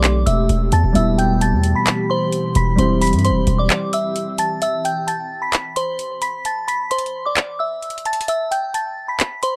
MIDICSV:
0, 0, Header, 1, 6, 480
1, 0, Start_track
1, 0, Key_signature, 1, "minor"
1, 0, Tempo, 458015
1, 1000, Time_signature, 4, 2, 24, 8
1, 10019, End_track
2, 0, Start_track
2, 0, Title_t, "Synth bell"
2, 0, Program_c, 0, 98
2, 0, Note_on_c, 0, 74, 54
2, 0, Note_on_c, 0, 86, 75
2, 259, Note_off_c, 0, 86, 0
2, 264, Note_off_c, 0, 74, 0
2, 274, Note_on_c, 0, 88, 85
2, 283, Note_on_c, 0, 76, 59
2, 728, Note_off_c, 0, 88, 0
2, 733, Note_off_c, 0, 76, 0
2, 761, Note_on_c, 0, 81, 89
2, 769, Note_on_c, 0, 93, 59
2, 985, Note_off_c, 0, 81, 0
2, 989, Note_off_c, 0, 93, 0
2, 998, Note_on_c, 0, 76, 91
2, 1007, Note_on_c, 0, 88, 73
2, 1223, Note_off_c, 0, 76, 0
2, 1228, Note_off_c, 0, 88, 0
2, 1239, Note_on_c, 0, 79, 81
2, 1248, Note_on_c, 0, 91, 60
2, 1464, Note_off_c, 0, 79, 0
2, 1468, Note_off_c, 0, 91, 0
2, 1481, Note_on_c, 0, 81, 79
2, 1489, Note_on_c, 0, 93, 66
2, 1819, Note_off_c, 0, 81, 0
2, 1823, Note_off_c, 0, 93, 0
2, 1839, Note_on_c, 0, 83, 69
2, 1848, Note_on_c, 0, 95, 55
2, 2178, Note_off_c, 0, 83, 0
2, 2182, Note_off_c, 0, 95, 0
2, 2199, Note_on_c, 0, 84, 86
2, 2207, Note_on_c, 0, 72, 72
2, 2651, Note_off_c, 0, 84, 0
2, 2655, Note_off_c, 0, 72, 0
2, 2683, Note_on_c, 0, 83, 85
2, 2691, Note_on_c, 0, 95, 64
2, 2906, Note_off_c, 0, 83, 0
2, 2910, Note_off_c, 0, 95, 0
2, 2920, Note_on_c, 0, 84, 82
2, 2929, Note_on_c, 0, 72, 60
2, 3144, Note_off_c, 0, 84, 0
2, 3149, Note_off_c, 0, 72, 0
2, 3160, Note_on_c, 0, 83, 93
2, 3168, Note_on_c, 0, 95, 76
2, 3384, Note_off_c, 0, 83, 0
2, 3389, Note_off_c, 0, 95, 0
2, 3401, Note_on_c, 0, 84, 92
2, 3409, Note_on_c, 0, 72, 65
2, 3739, Note_off_c, 0, 84, 0
2, 3743, Note_off_c, 0, 72, 0
2, 3757, Note_on_c, 0, 86, 78
2, 3766, Note_on_c, 0, 74, 60
2, 4097, Note_off_c, 0, 86, 0
2, 4101, Note_off_c, 0, 74, 0
2, 4120, Note_on_c, 0, 88, 77
2, 4128, Note_on_c, 0, 76, 61
2, 4571, Note_off_c, 0, 88, 0
2, 4575, Note_off_c, 0, 76, 0
2, 4598, Note_on_c, 0, 81, 83
2, 4606, Note_on_c, 0, 93, 64
2, 4823, Note_off_c, 0, 81, 0
2, 4827, Note_off_c, 0, 93, 0
2, 4841, Note_on_c, 0, 76, 96
2, 4849, Note_on_c, 0, 88, 66
2, 5065, Note_off_c, 0, 76, 0
2, 5069, Note_off_c, 0, 88, 0
2, 5080, Note_on_c, 0, 79, 77
2, 5088, Note_on_c, 0, 91, 65
2, 5304, Note_off_c, 0, 79, 0
2, 5309, Note_off_c, 0, 91, 0
2, 5317, Note_on_c, 0, 81, 76
2, 5326, Note_on_c, 0, 93, 63
2, 5657, Note_off_c, 0, 81, 0
2, 5661, Note_off_c, 0, 93, 0
2, 5677, Note_on_c, 0, 83, 66
2, 5686, Note_on_c, 0, 95, 54
2, 6017, Note_off_c, 0, 83, 0
2, 6021, Note_off_c, 0, 95, 0
2, 6037, Note_on_c, 0, 84, 80
2, 6045, Note_on_c, 0, 72, 71
2, 6489, Note_off_c, 0, 84, 0
2, 6494, Note_off_c, 0, 72, 0
2, 6515, Note_on_c, 0, 83, 75
2, 6523, Note_on_c, 0, 95, 61
2, 6742, Note_off_c, 0, 83, 0
2, 6746, Note_off_c, 0, 95, 0
2, 6765, Note_on_c, 0, 81, 85
2, 6772, Note_on_c, 0, 93, 62
2, 6987, Note_off_c, 0, 81, 0
2, 6991, Note_off_c, 0, 93, 0
2, 6997, Note_on_c, 0, 83, 93
2, 7006, Note_on_c, 0, 95, 75
2, 7223, Note_off_c, 0, 83, 0
2, 7227, Note_off_c, 0, 95, 0
2, 7238, Note_on_c, 0, 84, 88
2, 7246, Note_on_c, 0, 72, 63
2, 7577, Note_off_c, 0, 84, 0
2, 7582, Note_off_c, 0, 72, 0
2, 7604, Note_on_c, 0, 86, 79
2, 7612, Note_on_c, 0, 74, 53
2, 7940, Note_off_c, 0, 86, 0
2, 7945, Note_off_c, 0, 74, 0
2, 7956, Note_on_c, 0, 88, 83
2, 7964, Note_on_c, 0, 76, 57
2, 8409, Note_off_c, 0, 88, 0
2, 8413, Note_off_c, 0, 76, 0
2, 8443, Note_on_c, 0, 81, 83
2, 8451, Note_on_c, 0, 93, 58
2, 8666, Note_off_c, 0, 81, 0
2, 8670, Note_off_c, 0, 93, 0
2, 8680, Note_on_c, 0, 76, 92
2, 8689, Note_on_c, 0, 88, 68
2, 8904, Note_off_c, 0, 76, 0
2, 8909, Note_off_c, 0, 88, 0
2, 8921, Note_on_c, 0, 79, 78
2, 8929, Note_on_c, 0, 91, 61
2, 9145, Note_off_c, 0, 79, 0
2, 9149, Note_off_c, 0, 91, 0
2, 9160, Note_on_c, 0, 81, 78
2, 9169, Note_on_c, 0, 93, 61
2, 9498, Note_off_c, 0, 81, 0
2, 9503, Note_off_c, 0, 93, 0
2, 9519, Note_on_c, 0, 83, 67
2, 9528, Note_on_c, 0, 95, 54
2, 9858, Note_off_c, 0, 83, 0
2, 9862, Note_off_c, 0, 95, 0
2, 9878, Note_on_c, 0, 84, 82
2, 9886, Note_on_c, 0, 72, 72
2, 10019, Note_off_c, 0, 72, 0
2, 10019, Note_off_c, 0, 84, 0
2, 10019, End_track
3, 0, Start_track
3, 0, Title_t, "Felt piano"
3, 0, Program_c, 1, 0
3, 0, Control_c, 1, 64, 127
3, 0, Note_on_c, 1, 57, 72
3, 0, Note_on_c, 1, 60, 66
3, 0, Note_on_c, 1, 64, 62
3, 0, Note_on_c, 1, 67, 78
3, 946, Note_off_c, 1, 57, 0
3, 955, Note_off_c, 1, 60, 0
3, 965, Note_off_c, 1, 64, 0
3, 971, Note_on_c, 1, 55, 73
3, 974, Note_off_c, 1, 67, 0
3, 989, Note_on_c, 1, 47, 65
3, 1008, Note_on_c, 1, 64, 65
3, 1012, Control_c, 1, 64, 0
3, 1026, Note_on_c, 1, 67, 74
3, 1225, Control_c, 1, 64, 127
3, 2866, Note_off_c, 1, 55, 0
3, 2876, Note_off_c, 1, 47, 0
3, 2885, Note_off_c, 1, 64, 0
3, 2888, Note_on_c, 1, 55, 76
3, 2895, Note_off_c, 1, 67, 0
3, 2906, Note_on_c, 1, 60, 69
3, 2925, Note_on_c, 1, 64, 61
3, 2932, Control_c, 1, 64, 0
3, 2944, Note_on_c, 1, 67, 78
3, 3126, Control_c, 1, 64, 127
3, 4785, Note_off_c, 1, 55, 0
3, 4794, Note_off_c, 1, 60, 0
3, 4804, Note_off_c, 1, 64, 0
3, 4814, Note_off_c, 1, 67, 0
3, 4854, Control_c, 1, 64, 0
3, 10019, End_track
4, 0, Start_track
4, 0, Title_t, "Ambient pad"
4, 0, Program_c, 2, 92
4, 0, Note_on_c, 2, 57, 83
4, 0, Note_on_c, 2, 60, 73
4, 0, Note_on_c, 2, 67, 85
4, 957, Note_off_c, 2, 67, 0
4, 980, Note_off_c, 2, 60, 0
4, 981, Note_off_c, 2, 57, 0
4, 1001, Note_on_c, 2, 47, 73
4, 1001, Note_on_c, 2, 52, 78
4, 1001, Note_on_c, 2, 67, 87
4, 2901, Note_off_c, 2, 47, 0
4, 2921, Note_on_c, 2, 60, 75
4, 4802, Note_off_c, 2, 52, 0
4, 4802, Note_off_c, 2, 67, 0
4, 4821, Note_off_c, 2, 60, 0
4, 10019, End_track
5, 0, Start_track
5, 0, Title_t, "808-style bass"
5, 0, Program_c, 3, 38
5, 0, Note_on_c, 3, 35, 108
5, 261, Note_off_c, 3, 35, 0
5, 280, Note_on_c, 3, 28, 107
5, 510, Note_off_c, 3, 28, 0
5, 520, Note_on_c, 3, 28, 111
5, 750, Note_off_c, 3, 28, 0
5, 759, Note_on_c, 3, 40, 105
5, 875, Note_off_c, 3, 40, 0
5, 880, Note_on_c, 3, 28, 99
5, 995, Note_off_c, 3, 28, 0
5, 1000, Note_on_c, 3, 28, 111
5, 1600, Note_on_c, 3, 40, 99
5, 1616, Note_off_c, 3, 28, 0
5, 1828, Note_off_c, 3, 40, 0
5, 2680, Note_on_c, 3, 28, 108
5, 2910, Note_off_c, 3, 28, 0
5, 2919, Note_on_c, 3, 28, 110
5, 3278, Note_on_c, 3, 43, 102
5, 3294, Note_off_c, 3, 28, 0
5, 3459, Note_on_c, 3, 28, 99
5, 3475, Note_off_c, 3, 43, 0
5, 3630, Note_off_c, 3, 28, 0
5, 3640, Note_on_c, 3, 28, 108
5, 3870, Note_off_c, 3, 28, 0
5, 10019, End_track
6, 0, Start_track
6, 0, Title_t, "Drums"
6, 38, Note_on_c, 9, 42, 85
6, 40, Note_on_c, 9, 39, 117
6, 143, Note_off_c, 9, 42, 0
6, 144, Note_off_c, 9, 39, 0
6, 279, Note_on_c, 9, 42, 86
6, 384, Note_off_c, 9, 42, 0
6, 517, Note_on_c, 9, 42, 68
6, 622, Note_off_c, 9, 42, 0
6, 754, Note_on_c, 9, 42, 86
6, 859, Note_off_c, 9, 42, 0
6, 999, Note_on_c, 9, 42, 84
6, 1104, Note_off_c, 9, 42, 0
6, 1243, Note_on_c, 9, 42, 74
6, 1348, Note_off_c, 9, 42, 0
6, 1481, Note_on_c, 9, 42, 81
6, 1586, Note_off_c, 9, 42, 0
6, 1714, Note_on_c, 9, 42, 69
6, 1818, Note_off_c, 9, 42, 0
6, 1957, Note_on_c, 9, 42, 87
6, 1959, Note_on_c, 9, 39, 120
6, 2062, Note_off_c, 9, 42, 0
6, 2064, Note_off_c, 9, 39, 0
6, 2436, Note_on_c, 9, 42, 68
6, 2541, Note_off_c, 9, 42, 0
6, 2674, Note_on_c, 9, 42, 80
6, 2779, Note_off_c, 9, 42, 0
6, 2919, Note_on_c, 9, 42, 85
6, 3023, Note_off_c, 9, 42, 0
6, 3159, Note_on_c, 9, 42, 77
6, 3164, Note_on_c, 9, 46, 78
6, 3219, Note_off_c, 9, 42, 0
6, 3219, Note_on_c, 9, 42, 66
6, 3269, Note_off_c, 9, 46, 0
6, 3280, Note_off_c, 9, 42, 0
6, 3280, Note_on_c, 9, 42, 57
6, 3339, Note_off_c, 9, 42, 0
6, 3339, Note_on_c, 9, 42, 46
6, 3402, Note_off_c, 9, 42, 0
6, 3402, Note_on_c, 9, 42, 77
6, 3507, Note_off_c, 9, 42, 0
6, 3635, Note_on_c, 9, 42, 71
6, 3740, Note_off_c, 9, 42, 0
6, 3878, Note_on_c, 9, 42, 87
6, 3880, Note_on_c, 9, 39, 116
6, 3983, Note_off_c, 9, 42, 0
6, 3984, Note_off_c, 9, 39, 0
6, 4118, Note_on_c, 9, 42, 86
6, 4223, Note_off_c, 9, 42, 0
6, 4357, Note_on_c, 9, 42, 68
6, 4461, Note_off_c, 9, 42, 0
6, 4595, Note_on_c, 9, 42, 84
6, 4699, Note_off_c, 9, 42, 0
6, 4839, Note_on_c, 9, 42, 83
6, 4944, Note_off_c, 9, 42, 0
6, 5084, Note_on_c, 9, 42, 75
6, 5189, Note_off_c, 9, 42, 0
6, 5322, Note_on_c, 9, 42, 72
6, 5426, Note_off_c, 9, 42, 0
6, 5798, Note_on_c, 9, 42, 92
6, 5799, Note_on_c, 9, 39, 117
6, 5903, Note_off_c, 9, 42, 0
6, 5904, Note_off_c, 9, 39, 0
6, 6039, Note_on_c, 9, 42, 91
6, 6144, Note_off_c, 9, 42, 0
6, 6277, Note_on_c, 9, 42, 66
6, 6382, Note_off_c, 9, 42, 0
6, 6515, Note_on_c, 9, 42, 84
6, 6620, Note_off_c, 9, 42, 0
6, 6759, Note_on_c, 9, 42, 83
6, 6864, Note_off_c, 9, 42, 0
6, 7004, Note_on_c, 9, 42, 71
6, 7108, Note_off_c, 9, 42, 0
6, 7240, Note_on_c, 9, 42, 73
6, 7320, Note_off_c, 9, 42, 0
6, 7320, Note_on_c, 9, 42, 58
6, 7400, Note_off_c, 9, 42, 0
6, 7400, Note_on_c, 9, 42, 42
6, 7505, Note_off_c, 9, 42, 0
6, 7718, Note_on_c, 9, 42, 87
6, 7720, Note_on_c, 9, 39, 117
6, 7823, Note_off_c, 9, 42, 0
6, 7825, Note_off_c, 9, 39, 0
6, 8200, Note_on_c, 9, 42, 41
6, 8281, Note_off_c, 9, 42, 0
6, 8281, Note_on_c, 9, 42, 48
6, 8360, Note_off_c, 9, 42, 0
6, 8360, Note_on_c, 9, 42, 53
6, 8440, Note_off_c, 9, 42, 0
6, 8440, Note_on_c, 9, 42, 61
6, 8520, Note_off_c, 9, 42, 0
6, 8520, Note_on_c, 9, 42, 69
6, 8600, Note_off_c, 9, 42, 0
6, 8600, Note_on_c, 9, 42, 73
6, 8680, Note_off_c, 9, 42, 0
6, 8680, Note_on_c, 9, 42, 79
6, 8784, Note_off_c, 9, 42, 0
6, 8926, Note_on_c, 9, 42, 72
6, 9030, Note_off_c, 9, 42, 0
6, 9162, Note_on_c, 9, 42, 73
6, 9267, Note_off_c, 9, 42, 0
6, 9639, Note_on_c, 9, 42, 89
6, 9640, Note_on_c, 9, 39, 121
6, 9743, Note_off_c, 9, 42, 0
6, 9745, Note_off_c, 9, 39, 0
6, 9879, Note_on_c, 9, 42, 87
6, 9984, Note_off_c, 9, 42, 0
6, 10019, End_track
0, 0, End_of_file